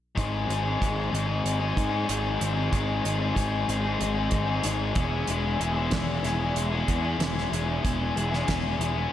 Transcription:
0.15 G#1 G#2 D#3 G#3 C4 D#4 G#4, kick, closed hi-hat
0.48 G#1 G#3 C4 D#4 G#4, closed hi-hat
0.64 G#3 C4 D#4 G#4
0.81 G#1 G#2 D#3 G#3 C4 D#4 G#4, kick, closed hi-hat
1.11 G#1 G#3 C4 D#4 G#4, closed hi-hat
1.27 G#3 C4 D#4 G#4
1.45 G#1, closed hi-hat
1.59 G#3 C4 D#4 G#4
1.76 G#2, kick, closed hi-hat
1.90 G#3 C4 D#4 G#4
2.06 G#1 G#2 D#3 G#3 C4 D#4 G#4, closed hi-hat
2.38 G#1 G#3 C4 D#4 G#4, closed hi-hat
2.55 G#3 C4 D#4 G#4
2.71 G#1 G#2 D#3 G#3 C4 D#4 G#4, kick, closed hi-hat
3.02 G#1 G#3 C4 D#4 G#4, closed hi-hat
3.18 G#3 C4 D#4 G#4
3.34 G#1 G#2 D#3 G#3 C4 D#4 G#4, kick, closed hi-hat
3.67 G#1 G#3 C4 D#4 G#4, closed hi-hat
3.83 G#3 C4 D#4 G#4
4.01 G#1, closed hi-hat
4.15 G#3 C4 D#4 G#4
4.31 G#1, kick, closed hi-hat
4.47 G#3 C4 D#4 G#4
4.62 G#1 G#2 D#3 G#3 C4 D#4 G#4, closed hi-hat
4.94 E1 E2 E3 G#3 B3 E4 G#4, kick, closed hi-hat
5.11 G#3 B3 E4 G#4
5.27 E1 E2 E3 G#3 B3 E4 G#4, closed hi-hat
5.59 E1 G#3 B3 E4 G#4, closed hi-hat
5.74 B3 E4 G#4
5.78 G#3
5.90 E1 E2 E3 G#3 B3 E4 G#4, kick, snare, closed hi-hat
6.23 E1 G#3 B3 E4 G#4, snare, closed hi-hat
6.39 G#3 B3 E4 G#4
6.55 E1, closed hi-hat
6.71 B3 E4 G#4
6.75 G#3
6.88 E2, kick, closed hi-hat
7.02 G#3 B3 E4 G#4
7.19 E1 E2 E3 G#3 B3 E4 G#4, snare, closed hi-hat
7.38 snare
7.51 E1 G#3 B3 E4 G#4, closed hi-hat
7.67 G#3 B3 E4 G#4
7.82 E1 E2 E3 G#3 B3 E4 G#4, kick, closed hi-hat
8.14 E1 G#3 B3 E4, closed hi-hat
8.18 G#4
8.30 G#3 B3 E4 G#4, snare
8.46 E1 E2 E3 G#3 B3 E4 G#4, kick, snare, closed hi-hat
8.78 E1 G#3 B3 E4 G#4, closed hi-hat
8.94 G#3 B3 E4 G#4

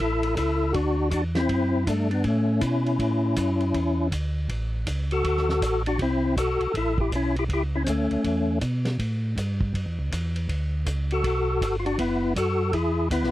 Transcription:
0.00 A1 E4 A4, kick, ride
0.23 ride
0.36 C#2 E4 A4, kick, hi-hat pedal, ride
0.73 D2 D4 F#4, kick, ride
1.11 E2 D4 F#4, kick, hi-hat pedal, ride
1.35 C4 E4, snare, ride
1.49 F#2, kick, ride
1.87 G2 A3 D4, kick, hi-hat pedal, ride
2.11 B3 D4, ride
2.24 A2 A3 C#4, kick, ride
2.61 B2 C#4 E4, kick, hi-hat pedal, ride
2.86 ride
2.99 A2, kick, ride
3.36 F#2, kick, hi-hat pedal, ride
3.60 ride
3.74 E2, kick, ride
4.11 D2, kick, hi-hat pedal, ride
4.49 A1, kick, ride
4.87 C#2, kick, hi-hat pedal, ride
5.11 F#4 A4, ride
5.24 D2, kick, ride
5.37 snare
5.49 snare
5.62 A1, kick, hi-hat pedal, ride
5.86 D4 F#4, ride
5.99 C2 C4 E4, kick, ride
6.37 B1 F#4 A4, kick, hi-hat pedal, ride
6.60 B1, ride
6.74 A1 E4 A4, kick, ride
6.98 E4 G4, kick
7.12 B1 C#4 E4, kick, hi-hat pedal, ride
7.36 E4 G4, ride
7.49 C#2, kick, ride
7.53 E4 G4
7.75 C#4 E4
7.84 D2 C4, kick, hi-hat pedal, ride
7.88 A3 C#4
8.11 D2, ride
8.24 E2, kick, ride
8.61 B2, kick, hi-hat pedal, ride
8.85 snare, ride
8.99 A2, kick, ride
9.36 G2, kick, hi-hat pedal, ride
9.61 kick
9.74 F#2, kick, ride
9.86 E2
9.99 C#2
10.11 E2, kick, hi-hat pedal, ride
10.36 ride
10.49 D2, kick, ride
10.86 C#2, kick, hi-hat pedal, ride
11.11 F#4 A4, ride
11.24 B1, kick, ride
11.61 G1, kick, hi-hat pedal, ride
11.79 F4
11.86 D4 F#4, ride
11.98 F#1 B3 E4, kick, ride
12.35 F#2 F#4 A4, kick, hi-hat pedal, ride
12.73 E2 E4 G#4, kick, ride
13.10 D2 B3 E4, kick, hi-hat pedal, ride
13.23 B1, snare

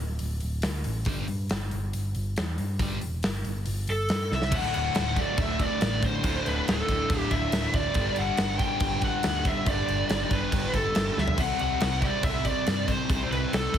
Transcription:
0.00 D1
0.19 D1, open hi-hat
0.40 D1, open hi-hat
0.62 D2, snare, open hi-hat
0.84 A1, open hi-hat
1.05 G1 G2 D3 G3, kick, open hi-hat
1.28 G2, open hi-hat
1.50 G1, snare, open hi-hat
1.71 G1, open hi-hat
1.93 G1, open hi-hat
2.15 G1, open hi-hat
2.36 E2, snare, open hi-hat
2.58 G2, open hi-hat
2.79 G1 G2 D3 G3, kick, open hi-hat
3.01 E1, open hi-hat
3.23 G1, snare, open hi-hat
3.45 G1, open hi-hat
3.66 G1, open hi-hat
3.87 G1 A4, open hi-hat
4.09 G2, snare, open hi-hat
4.31 C2 E5, snare
4.42 snare
4.51 D1 D2 A2 D3, kick, crash
4.55 F#5
4.74 D1 F#5, crash
4.95 D1, snare, crash
5.16 D2 A2 D3 D5, kick, crash
5.38 D1 E5, kick, crash
5.59 D5, kick, crash
5.81 A1, snare, crash
6.02 C5, kick, crash
6.23 D1 D2 A2 D3, kick, crash
6.46 D1 B4, crash
6.68 D1 A4, snare, crash
6.88 D1 D2 A2 D3, kick, crash
7.10 D1, kick, crash
7.19 G4
7.31 D1 E5, kick, crash
7.52 D1, snare, crash
7.73 D1 D5, kick, crash
7.94 G1 G2 D3 G3, kick, crash
8.16 G1 F#5, crash
8.37 G1, snare, crash
8.59 G2 D3 G3 G5, kick, crash
8.80 G1, kick, crash
9.01 F#5, kick, crash
9.23 D2, snare, crash
9.45 E5, kick, crash
9.65 G1 G2 D3 G3 D5, kick, crash
9.88 G1, crash
10.09 G1, snare, crash
10.31 G1 G2 D3 G3 B4, kick, crash
10.52 G1, kick, crash
10.73 G1 A4, kick, crash
10.95 G1, snare, crash
11.18 D2 E5, snare
11.28 floor tom
11.38 C2 C3 G3 C4 F#5, kick, crash
11.59 C2 F#5, crash
11.80 C2, snare, crash
12.02 C3 G3 C4 D5, kick, crash
12.23 C2 E5, kick, crash
12.45 D5, kick, crash
12.66 G2, snare, crash
12.88 C5, kick, crash
13.09 C2 C3 G3 C4, kick, crash
13.31 C2 B4, crash
13.53 C2 A4, snare, crash
13.74 C2 C4, kick, crash

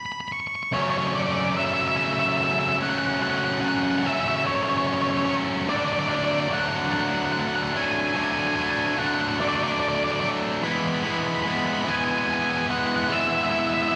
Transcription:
0.06 B5
0.12 B5
0.20 B5
0.28 B5
0.32 C#6
0.40 C#6
0.47 C#6
0.55 C#6
0.63 C#6
0.72 F#2 C#3 F#3 A3 C#4 C#5
0.82 C#5
0.90 C#5
0.98 C#5
1.07 C#5
1.14 F#3 A3 C#4 D5
1.23 D5
1.32 D5
1.41 D5
1.50 D5
1.54 C#3 F#3 A3 C#4 E5
1.65 E5
1.74 E5
1.81 E5
1.88 E5
1.95 F#2 C#3 F#3 A3 C#4 E5
2.04 E5
2.13 E5
2.19 E5
2.29 E5
2.37 E5
2.44 E5
2.53 E5
2.59 E5
2.69 E5
2.78 F#3 A3 C#4
2.82 F#5
2.90 F#5
2.98 F#5
3.06 F#5
3.14 F#5
3.19 F#2 C#3 F#3 A3 C#4 F#5
3.31 F#5
3.38 F#5
3.45 F#5
3.53 F#5
3.60 F#3 A3 C#4 F#5
3.68 F#5
3.76 F#5
3.84 F#5
3.91 F#5
3.99 F#5
4.03 C#3 F#3 A3 C#4 E5
4.13 E5
4.20 E5
4.28 E5
4.36 E5
4.43 F#2 C#3 F#3 A3 C#4 C#5
4.55 C#5
4.63 C#5
4.69 C#5
4.78 C#5
4.87 C#5
4.94 C#5
5.02 C#5
5.11 C#5
5.17 C#5
5.24 F#3 A3 C#4 C#5
5.66 D3 F#3 A3 D4 D5
5.77 D5
5.85 D5
5.93 D5
5.99 D5
6.08 F#3 A3 D4 D5
6.15 D5
6.24 D5
6.31 D5
6.40 D5
6.49 D3 F#3 A3 D4
6.53 F#5
6.60 F#5
6.69 F#5
6.76 F#5
6.86 F#5
6.90 D3 F#3 A3 D4 F#5
7.01 F#5
7.09 F#5
7.15 F#5
7.25 F#5
7.32 F#5
7.40 F#5
7.47 F#5
7.55 F#5
7.63 F#5
7.73 F#3 A3 D4 G#5
7.84 G#5
7.92 G#5
8.00 G#5
8.08 G#5
8.14 D3 F#3 A3 D4 G#5
8.24 G#5
8.31 G#5
8.40 G#5
8.47 G#5
8.55 A3 D4 G#5
8.59 F#3 G#5
8.71 G#5
8.79 G#5
8.86 G#5
8.94 D3 F#3 G#5
8.99 A3 D4 F#5
9.06 F#5
9.14 F#5
9.21 F#5
9.29 F#5
9.38 D3 F#3 A3 D4 D5
9.48 D5
9.55 D5
9.63 D5
9.72 D5
9.80 D5
9.89 D5
9.95 D5
10.04 D5
10.12 D5
10.20 F#3 A3 D4 D5
10.62 E3 G#3 B3 E4 B5
10.72 B5
10.80 B5
10.87 B5
10.95 B5
11.03 G#3 B3 E4 B5
11.11 B5
11.19 B5
11.27 B5
11.35 B5
11.42 E3 G#3 B3 B5
11.47 E4 B5
11.58 B5
11.66 B5
11.74 B5
11.82 E4 B5
11.86 E3 G#3 B3 G#5
11.95 G#5
12.04 G#5
12.11 G#5
12.18 G#5
12.27 G#5
12.34 G#5
12.42 G#5
12.51 G#5
12.57 G#5
12.67 G#3 B3 E4 F#5
12.79 F#5
12.87 F#5
12.96 F#5
13.04 E3 F#5
13.09 G#3 B3 E4 E5
13.20 E5
13.29 E5
13.35 E5
13.44 E5
13.50 G#3 B3 E4 E5
13.59 E5
13.67 E5
13.74 E5
13.82 E5
13.89 E3 E5

